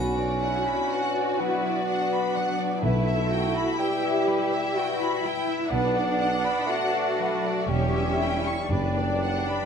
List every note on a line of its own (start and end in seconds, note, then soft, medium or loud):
0.00 0.72 B1 soft
0.00 0.73 B1 soft
0.00 1.36 B2 soft
0.00 2.83 B2 soft
0.00 3.08 B3 soft
0.00 1.42 C#4 medium
0.00 0.15 D4 soft
0.00 0.38 F#4 soft
0.00 2.79 F#4 soft
0.00 0.14 B4 soft
0.00 0.90 B4 soft
0.00 2.79 D5 soft
0.16 0.66 D4 soft
0.16 0.42 D5 soft
0.42 0.91 E4 soft
0.42 0.84 E4 soft
0.42 0.67 F#5 soft
0.66 1.15 D4 soft
0.66 0.91 B5 soft
0.91 1.40 F#4 soft
0.91 1.87 B4 soft
0.91 1.15 F#5 soft
1.15 1.63 D4 soft
1.15 1.40 D5 soft
1.40 2.35 F#3 soft
1.40 2.84 B3 medium
1.40 1.88 E4 soft
1.40 1.64 B4 soft
1.64 2.11 D4 soft
1.64 1.88 D5 soft
1.88 2.81 D4 soft
1.88 3.78 B4 soft
1.88 2.12 F#5 soft
2.12 2.58 D4 soft
2.12 2.36 B5 soft
2.36 2.87 F#3 soft
2.36 2.59 F#5 soft
2.60 2.87 D4 soft
2.60 2.83 D5 soft
2.82 3.60 B1 medium
2.82 4.23 B2 soft
2.82 5.70 B2 soft
2.82 3.78 A3 medium
2.82 5.68 E4 soft
2.82 3.31 E4 soft
2.82 3.05 B4 soft
2.82 5.68 E5 soft
3.08 3.54 E4 soft
3.08 3.31 E5 soft
3.30 3.71 F#4 soft
3.30 3.79 F#4 medium
3.30 3.55 G5 soft
3.55 4.01 E4 soft
3.55 3.79 B5 soft
3.79 5.21 G3 medium
3.79 4.73 G4 medium
3.79 4.74 B4 soft
3.79 4.03 G5 soft
4.02 4.49 E4 soft
4.02 4.28 E5 soft
4.27 5.23 G3 soft
4.27 4.51 B4 soft
4.51 4.99 E4 soft
4.51 4.75 E5 soft
4.75 5.24 F#4 medium
4.75 6.67 B4 soft
4.75 5.01 G5 soft
5.00 5.47 E4 soft
5.00 5.25 B5 soft
5.24 5.76 G3 soft
5.24 5.73 E4 medium
5.24 5.49 G5 soft
5.48 5.76 E4 soft
5.48 5.73 E5 soft
5.71 6.49 B1 medium
5.71 7.73 B2 soft
5.71 6.68 B3 medium
5.71 6.68 D4 soft
5.71 7.69 D4 soft
5.71 5.95 B4 medium
5.71 7.65 F#5 medium
5.96 6.42 F#4 soft
5.96 6.21 D5 soft
6.20 6.61 G4 soft
6.20 6.44 F#5 soft
6.44 6.92 F#4 soft
6.44 6.69 B5 soft
6.66 7.71 A3 medium
6.66 7.69 F#4 soft
6.66 7.74 B4 soft
6.66 6.94 F#5 soft
6.94 7.44 F#4 soft
6.94 7.19 D5 soft
7.19 7.74 F#3 soft
7.19 7.45 B4 soft
7.45 7.74 F#4 soft
7.45 7.71 D5 soft
7.68 8.51 E1 soft
7.68 8.74 E2 soft
7.68 8.69 G3 medium
7.68 8.69 C#4 soft
7.68 8.19 G4 soft
7.68 8.70 E5 soft
7.72 7.94 C#5 soft
7.94 8.44 G4 soft
7.94 8.21 E5 soft
8.19 8.70 E4 soft
8.19 8.62 A4 soft
8.19 8.46 G5 soft
8.45 8.74 G4 soft
8.45 8.71 C#6 soft
8.68 9.53 F#1 medium
8.68 9.53 F#1 soft
8.68 9.65 F#2 medium
8.68 9.65 F#2 soft
8.68 9.65 G3 medium
8.68 9.65 D4 soft
8.68 8.95 B4 soft
8.68 9.65 D5 soft
8.95 9.46 B4 soft
8.95 9.22 D5 soft
9.21 9.65 C#5 soft
9.21 9.48 F#5 soft
9.47 9.65 B4 soft
9.47 9.65 B5 soft